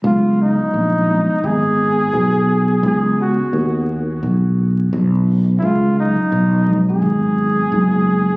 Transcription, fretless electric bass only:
X:1
M:4/4
L:1/16
Q:"Swing 16ths" 1/4=86
K:Dbmix
V:1 name="Fretless electric bass" clef=bass
D,,3 z B,,,3 z A,,,4 C,,4 | D,,3 z E,,4 C,,4 C,,4 | D,,3 z C,,4 A,,,4 G,,,4 |]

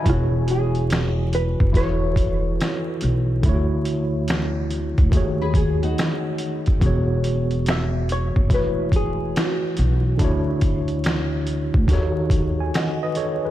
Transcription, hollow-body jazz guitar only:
X:1
M:4/4
L:1/16
Q:"Swing 16ths" 1/4=71
K:E
V:1 name="Hollow-body jazz guitar"
F2 G4 B2 c6 z2 | z16 | z4 e2 c2 B2 G2 F3 z | z16 |]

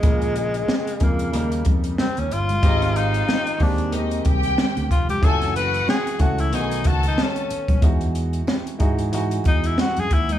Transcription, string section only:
X:1
M:4/4
L:1/8
Q:"Swing 16ths" 1/4=92
K:E
V:1 name="String section"
z8 | [Dd] [=F=f]2 z [Dd] [=G=g]2 z | [Ag] [Ff]2 z [Gg] [Aa]2 z | z8 |]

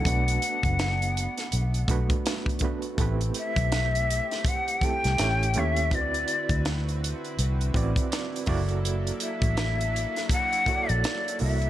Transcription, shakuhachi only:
X:1
M:4/4
L:1/16
Q:"Swing 16ths" 1/4=82
K:Ador
V:1 name="Shakuhachi"
f8- f3 z4 z | z2 e6 f2 g4 e2 | d4 z12 | z2 e6 f3 d3 e2 |]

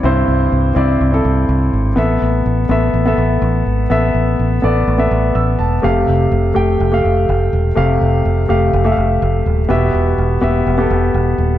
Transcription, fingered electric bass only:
X:1
M:4/4
L:1/8
Q:1/4=124
K:Am
V:1 name="Fingered electric bass" clef=bass
C,, C,, C,, C,, C,, C,, C,, _A,,, | A,,, A,,, A,,, A,,, A,,, A,,, A,,, _A,,, | A,,, A,,, A,,, A,,, A,,, A,,, A,,, E,,, | F,,, F,,, F,,, F,,, F,,, F,,, F,,, E,,, |
F,,, F,,, F,,, F,,, F,,, F,,, F,,, _E,,, | E,,, E,,, E,,, E,,, E,,, E,,, E,,, _E,,, |]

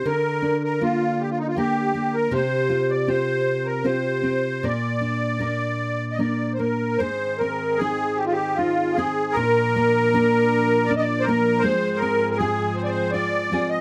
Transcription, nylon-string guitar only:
X:1
M:3/4
L:1/8
Q:1/4=79
K:Bbmix
V:1 name="Nylon-string guitar"
[D,B] D [B,DB]2 [B,DB] B, | [C,G] F [CFG]2 [CFG] C | [B,,B] D [B,DB]2 [B,DB] B, | A,, C [CEA]2 E [CEA] |
B,, B, [B,DB]2 D [B,DB] | A, C [CFA]2 F [CFA] |]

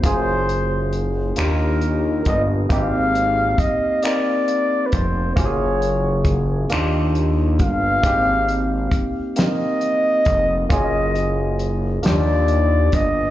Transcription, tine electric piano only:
X:1
M:6/8
L:1/8
Q:3/8=45
K:Ablyd
V:1 name="Tine electric piano"
[B,_DFA]2 z [B,=DFG]2 z | [B,CEG]2 z [B,CEB]2 z | [B,_DFGA]2 z [B,=DFG]2 z | [B,CEG]2 z [B,CEB]2 z |
[B,_DFA]2 z [B,=DFG]2 z |]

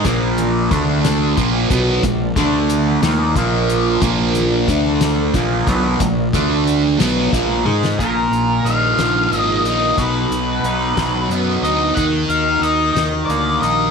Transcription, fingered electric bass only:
X:1
M:6/8
L:1/8
Q:3/8=60
K:none
V:1 name="Fingered electric bass" clef=bass
_B,,,2 D,,2 B,,, _C,, | _B,,, D,,2 _E,, B,,,2 | _B,,,2 D,,2 B,,, _C,, | _B,,, D,,2 _C,, B,,, _A,, |
_B,,, B,,, B,,, B,,, _A,,, B,,, | B,,, B,,, B,,, B,,, ^F,, D,, | _E,, E,, E,, E,, D,, _B,,, |]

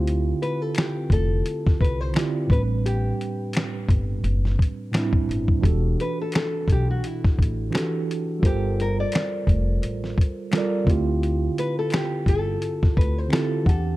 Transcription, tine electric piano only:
X:1
M:4/4
L:1/8
Q:"Swing 16ths" 1/4=86
K:Ddor
V:1 name="Tine electric piano"
[D,CEFG]2 z4 [D,CEFG] [A,,G,B,CDB]- | [A,,G,B,CDB]2 z4 [A,,G,CDE] z | [E,D^FGA]3 z3 [E,DFGA] z | [G,FA_Bc]3 z3 [G,FABd] [D,CEFG]- |
[D,CEFG]2 z4 [D,CEFG] [E,DGA^f] |]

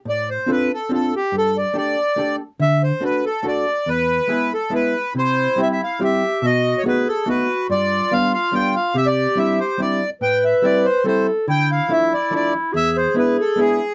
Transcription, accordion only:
X:1
M:3/4
L:1/16
Q:1/4=142
K:Ddor
V:1 name="Accordion"
d2 c2 B2 A2 A2 G2 | A2 d2 d6 z2 | e2 c2 B2 A2 d4 | B6 A2 B4 |
c4 e/2 z/2 e f2 e4 | ^d3- d/2 ^c/2 B2 A2 B4 | d4 f2 f2 g2 f2 | e d3 e2 c2 d3 z |
g2 e2 d2 c2 c2 z2 | g2 f2 e2 d2 d2 z2 | e2 c2 B2 A2 ^G4 |]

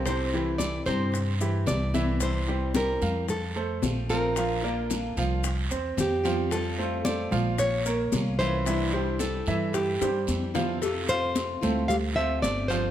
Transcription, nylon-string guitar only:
X:1
M:4/4
L:1/8
Q:1/4=112
K:F
V:1 name="Nylon-string guitar"
c2 d c3 d2 | c2 B2 A3 B- | B3 z3 G2 | A2 d2 _d3 c- |
c2 A2 G3 z | A c3 f e d c |]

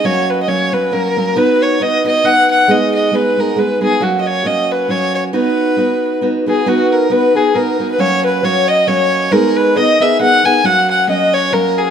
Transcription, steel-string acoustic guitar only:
X:1
M:3/4
L:1/8
Q:"Swing" 1/4=136
K:B
V:1 name="Steel-string acoustic guitar"
[F,A,CF]2 [F,A,CF] [F,A,CF] [F,A,CF] [F,A,CF] | [B,DFB]2 [B,DFB] [B,DFB] [B,DFB]2 | [G,B,DG]2 [G,B,DG] [G,B,DG] [G,B,DG] [G,B,DG] | [F,A,CF]2 [F,A,CF]2 [F,A,CF]2 |
[B,DFB]2 [B,DFB]2 [B,DFB] [B,DFB] | [B,DFB]2 [B,DFB] [B,DFB] [B,DFB] [B,DFB] | [F,A,CF]2 [F,A,CF]2 [F,A,CF]2 | [G,B,DGA]2 [B,DGA] [B,DGA] [B,DGA] [B,DGA] |
[F,A,CF]2 [F,A,CF]2 [F,A,CF]2 |]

